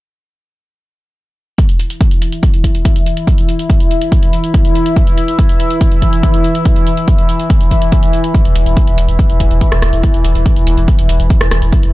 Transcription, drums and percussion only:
1.58 kick loud
1.58 closed hi-hat medium
1.69 closed hi-hat medium
1.79 closed hi-hat medium
1.90 closed hi-hat medium
2.01 kick loud
2.01 closed hi-hat medium
2.11 closed hi-hat medium
2.22 closed hi-hat medium
2.32 closed hi-hat medium
2.43 kick loud
2.43 closed hi-hat medium
2.54 closed hi-hat medium
2.64 kick medium
2.64 closed hi-hat medium
2.75 closed hi-hat medium
2.85 kick loud
2.85 closed hi-hat medium
2.96 closed hi-hat medium
3.06 closed hi-hat medium
3.17 closed hi-hat medium
3.27 kick loud
3.27 closed hi-hat medium
3.38 closed hi-hat medium
3.49 closed hi-hat medium
3.59 closed hi-hat medium
3.70 kick loud
3.70 closed hi-hat medium
3.80 closed hi-hat medium
3.91 closed hi-hat medium
4.02 closed hi-hat medium
4.12 kick loud
4.12 closed hi-hat medium
4.23 closed hi-hat medium
4.33 closed hi-hat medium
4.44 closed hi-hat medium
4.54 kick loud
4.54 closed hi-hat medium
4.65 closed hi-hat medium
4.75 closed hi-hat medium
4.86 closed hi-hat medium
4.96 kick loud
4.96 closed hi-hat medium
5.07 closed hi-hat medium
5.18 closed hi-hat medium
5.28 closed hi-hat medium
5.39 kick loud
5.39 closed hi-hat medium
5.49 closed hi-hat medium
5.60 closed hi-hat medium
5.70 closed hi-hat medium
5.81 kick loud
5.81 closed hi-hat medium
5.92 closed hi-hat medium
6.02 kick medium
6.02 closed hi-hat medium
6.13 closed hi-hat medium
6.23 kick loud
6.23 closed hi-hat medium
6.34 closed hi-hat medium
6.44 closed hi-hat medium
6.55 closed hi-hat medium
6.65 kick loud
6.65 closed hi-hat medium
6.76 closed hi-hat medium
6.87 closed hi-hat medium
6.97 closed hi-hat medium
7.08 kick loud
7.08 closed hi-hat medium
7.18 closed hi-hat soft
7.29 closed hi-hat medium
7.40 closed hi-hat medium
7.50 kick loud
7.50 closed hi-hat medium
7.61 closed hi-hat soft
7.71 kick medium
7.71 closed hi-hat medium
7.82 closed hi-hat soft
7.92 kick loud
7.92 closed hi-hat medium
8.03 closed hi-hat soft
8.13 closed hi-hat medium
8.24 closed hi-hat medium
8.34 kick loud
8.34 closed hi-hat medium
8.45 closed hi-hat soft
8.56 open hi-hat loud
8.66 closed hi-hat medium
8.77 kick loud
8.77 closed hi-hat medium
8.87 closed hi-hat soft
8.98 open hi-hat loud
9.09 closed hi-hat soft
9.19 kick loud
9.19 closed hi-hat medium
9.30 closed hi-hat soft
9.40 kick medium
9.40 open hi-hat loud
9.51 closed hi-hat soft
9.61 kick loud
9.61 closed hi-hat medium
9.72 cross-stick medium
9.72 closed hi-hat soft
9.82 cross-stick medium
9.82 open hi-hat loud
9.93 closed hi-hat soft
10.03 kick loud
10.03 closed hi-hat medium
10.14 closed hi-hat soft
10.25 open hi-hat loud
10.35 closed hi-hat soft
10.46 kick loud
10.46 closed hi-hat medium
10.56 closed hi-hat soft
10.67 open hi-hat loud
10.78 closed hi-hat soft
10.88 kick loud
10.88 closed hi-hat medium
10.99 open hi-hat medium
11.09 open hi-hat loud
11.20 closed hi-hat soft
11.30 kick loud
11.30 closed hi-hat medium
11.41 cross-stick medium
11.41 closed hi-hat soft
11.51 cross-stick medium
11.51 open hi-hat loud
11.62 closed hi-hat soft
11.72 kick loud
11.72 closed hi-hat medium
11.83 closed hi-hat soft

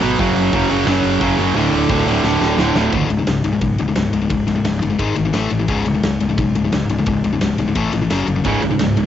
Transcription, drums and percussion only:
0.02 open hi-hat medium
0.19 kick loud
0.19 open hi-hat medium
0.36 open hi-hat medium
0.52 kick medium
0.52 open hi-hat medium
0.70 open hi-hat medium
0.87 snare loud
0.87 open hi-hat medium
1.04 open hi-hat medium
1.21 kick medium
1.21 open hi-hat medium
1.38 open hi-hat medium
1.55 open hi-hat medium
1.73 open hi-hat medium
1.89 kick loud
1.89 open hi-hat medium
2.06 open hi-hat medium
2.24 snare medium
2.41 snare medium
2.58 snare loud
2.75 snare loud
2.92 kick medium
2.92 ride medium
3.10 ride medium
3.27 snare loud
3.27 ride medium
3.44 ride medium
3.61 kick loud
3.61 ride medium
3.78 ride medium
3.96 snare loud
3.96 ride medium
4.13 ride medium
4.30 kick loud
4.30 ride medium
4.48 snare soft
4.48 ride medium
4.65 snare loud
4.65 ride medium
4.82 ride medium
4.99 kick loud
4.99 ride medium
5.16 ride medium
5.33 snare loud
5.33 ride loud
5.50 ride medium
5.68 kick medium
5.68 ride medium
5.85 ride medium
6.03 snare loud
6.03 ride medium
6.20 ride medium
6.38 kick loud
6.38 ride medium
6.55 ride medium
6.73 snare loud
6.73 ride medium
6.90 ride medium
7.06 kick loud
7.06 ride medium
7.24 ride medium
7.41 snare loud
7.41 ride medium
7.58 ride medium
7.75 kick loud
7.75 ride medium
7.93 ride medium
8.10 snare loud
8.10 ride medium
8.28 ride medium
8.45 kick loud
8.45 ride medium
8.62 ride medium
8.79 snare loud
8.79 ride medium
8.97 ride medium

